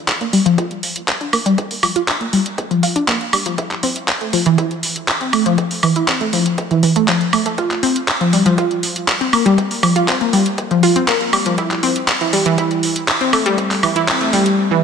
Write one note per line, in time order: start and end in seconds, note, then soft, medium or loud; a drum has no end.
0.08 kick loud
0.08 clap loud
0.08 closed hi-hat medium
0.21 0.31 A#3 medium
0.21 closed hi-hat soft
0.33 0.44 G3 medium
0.33 open hi-hat loud
0.46 0.56 F3 loud
0.46 closed hi-hat soft
0.58 0.65 F4 medium
0.58 kick loud
0.58 closed hi-hat medium
0.71 closed hi-hat soft
0.83 open hi-hat loud
0.96 closed hi-hat medium
1.08 kick loud
1.08 clap loud
1.08 closed hi-hat medium
1.21 1.25 D4 medium
1.21 closed hi-hat soft
1.33 1.44 A#3 medium
1.33 open hi-hat loud
1.33 high woodblock medium
1.46 1.53 G3 loud
1.46 closed hi-hat medium
1.58 kick loud
1.58 closed hi-hat medium
1.71 open hi-hat medium
1.83 1.90 F3 medium
1.83 open hi-hat loud
1.83 high woodblock medium
1.96 2.03 F4 medium
1.96 closed hi-hat medium
2.08 2.15 D4 medium
2.08 kick loud
2.08 clap loud
2.08 closed hi-hat soft
2.21 2.25 A#3 medium
2.21 closed hi-hat soft
2.33 2.44 G3 medium
2.33 open hi-hat loud
2.46 closed hi-hat soft
2.58 kick loud
2.58 closed hi-hat medium
2.71 2.81 F3 medium
2.71 closed hi-hat soft
2.83 2.90 F4 medium
2.83 open hi-hat loud
2.96 3.03 D4 medium
2.96 closed hi-hat medium
3.08 3.15 A#3 loud
3.08 kick loud
3.08 clap loud
3.08 closed hi-hat medium
3.21 closed hi-hat soft
3.33 3.44 G3 medium
3.33 open hi-hat loud
3.33 high woodblock medium
3.46 3.53 F3 medium
3.46 closed hi-hat medium
3.58 3.65 E4 medium
3.58 kick loud
3.58 closed hi-hat medium
3.71 clap soft
3.71 closed hi-hat soft
3.83 3.91 C4 medium
3.83 open hi-hat loud
3.96 closed hi-hat soft
4.08 kick loud
4.08 clap loud
4.08 closed hi-hat soft
4.21 4.32 A3 medium
4.21 closed hi-hat soft
4.33 4.44 F3 medium
4.33 open hi-hat loud
4.46 4.57 E3 loud
4.46 closed hi-hat soft
4.58 4.66 E4 medium
4.58 kick loud
4.58 closed hi-hat medium
4.71 closed hi-hat soft
4.83 open hi-hat loud
4.96 closed hi-hat soft
5.08 kick loud
5.08 clap loud
5.08 closed hi-hat soft
5.21 5.25 C4 medium
5.21 closed hi-hat soft
5.33 5.44 A3 medium
5.33 open hi-hat loud
5.33 high woodblock medium
5.46 5.53 F3 loud
5.46 closed hi-hat soft
5.58 kick loud
5.58 closed hi-hat soft
5.71 open hi-hat medium
5.83 5.91 E3 medium
5.83 open hi-hat loud
5.83 high woodblock medium
5.96 6.03 E4 medium
5.96 closed hi-hat soft
6.08 6.16 C4 medium
6.08 kick loud
6.08 clap loud
6.08 closed hi-hat soft
6.21 6.25 A3 medium
6.21 closed hi-hat soft
6.33 6.44 F3 medium
6.33 open hi-hat loud
6.46 closed hi-hat soft
6.58 kick loud
6.58 closed hi-hat medium
6.71 6.81 E3 medium
6.71 closed hi-hat soft
6.83 6.90 E3 medium
6.83 open hi-hat loud
6.96 7.03 A3 medium
6.96 closed hi-hat soft
7.08 7.16 F3 medium
7.08 kick loud
7.08 clap loud
7.08 closed hi-hat medium
7.21 closed hi-hat soft
7.33 7.44 A3 medium
7.33 open hi-hat loud
7.33 high woodblock medium
7.46 7.53 A3 medium
7.46 closed hi-hat soft
7.58 7.65 F4 medium
7.58 kick loud
7.58 closed hi-hat medium
7.71 clap soft
7.71 closed hi-hat soft
7.83 7.90 C4 medium
7.83 open hi-hat loud
7.96 closed hi-hat soft
8.08 kick loud
8.08 clap loud
8.08 closed hi-hat medium
8.21 8.31 F3 medium
8.21 closed hi-hat soft
8.33 8.44 G3 medium
8.33 open hi-hat loud
8.46 8.56 F3 loud
8.46 closed hi-hat soft
8.58 8.65 F4 medium
8.58 kick loud
8.58 closed hi-hat medium
8.71 closed hi-hat soft
8.83 open hi-hat loud
8.96 closed hi-hat medium
9.08 kick loud
9.08 clap loud
9.08 closed hi-hat soft
9.21 9.25 C4 medium
9.21 closed hi-hat soft
9.33 9.44 A#3 medium
9.33 open hi-hat loud
9.33 high woodblock medium
9.46 9.53 G3 loud
9.46 closed hi-hat soft
9.58 kick loud
9.58 closed hi-hat medium
9.71 open hi-hat medium
9.83 9.90 F3 medium
9.83 open hi-hat loud
9.83 high woodblock medium
9.96 10.03 F4 medium
9.96 closed hi-hat medium
10.08 10.16 C4 medium
10.08 kick loud
10.08 clap loud
10.08 closed hi-hat medium
10.21 10.25 A#3 medium
10.21 closed hi-hat soft
10.33 10.44 G3 medium
10.33 open hi-hat loud
10.46 closed hi-hat medium
10.58 kick loud
10.58 closed hi-hat medium
10.71 10.81 F3 medium
10.71 closed hi-hat soft
10.83 10.91 F4 medium
10.83 open hi-hat loud
10.96 11.03 C4 medium
10.96 closed hi-hat medium
11.08 11.15 A#3 loud
11.08 kick loud
11.08 clap loud
11.08 closed hi-hat medium
11.21 closed hi-hat soft
11.33 11.44 G3 medium
11.33 open hi-hat loud
11.33 high woodblock medium
11.46 11.53 F3 medium
11.46 closed hi-hat soft
11.58 11.65 E4 medium
11.58 kick loud
11.58 closed hi-hat medium
11.71 clap soft
11.71 closed hi-hat soft
11.83 11.90 C4 medium
11.83 open hi-hat loud
11.96 closed hi-hat medium
12.08 kick loud
12.08 clap loud
12.08 closed hi-hat medium
12.21 12.31 E3 medium
12.21 closed hi-hat soft
12.33 12.44 G3 medium
12.33 open hi-hat loud
12.46 12.56 E3 loud
12.46 closed hi-hat medium
12.58 12.65 E4 medium
12.58 kick loud
12.58 closed hi-hat medium
12.71 closed hi-hat soft
12.83 open hi-hat loud
12.96 closed hi-hat medium
13.08 kick loud
13.08 clap loud
13.08 closed hi-hat medium
13.21 13.25 C4 medium
13.21 closed hi-hat soft
13.33 13.44 A3 medium
13.33 open hi-hat loud
13.33 high woodblock medium
13.46 13.53 G3 loud
13.46 closed hi-hat medium
13.58 kick loud
13.58 closed hi-hat medium
13.71 clap soft
13.71 open hi-hat medium
13.83 13.90 E3 medium
13.83 open hi-hat loud
13.83 high woodblock medium
13.96 14.03 E4 medium
13.96 closed hi-hat medium
14.08 14.15 C4 medium
14.08 kick loud
14.08 clap loud
14.08 closed hi-hat medium
14.21 14.25 A3 medium
14.21 closed hi-hat soft
14.33 14.44 G3 medium
14.33 open hi-hat loud
14.46 closed hi-hat medium
14.71 14.81 E3 medium